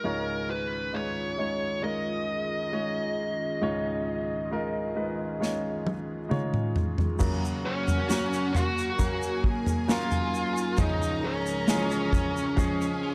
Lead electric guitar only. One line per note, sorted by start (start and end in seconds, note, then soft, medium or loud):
0.00 0.50 A#4 medium
0.51 0.96 B4 medium
0.95 1.83 C#5 medium
1.84 6.28 D#5 medium
7.66 8.52 C#4 medium
7.66 8.58 C#5 medium
8.56 9.41 F#4 medium
8.56 9.41 F#5 loud
9.91 10.76 F4 medium
9.91 10.83 F5 loud
10.80 11.22 D#4 medium
10.80 11.22 D#5 medium
11.25 13.15 C#4 medium
11.25 13.15 C#5 medium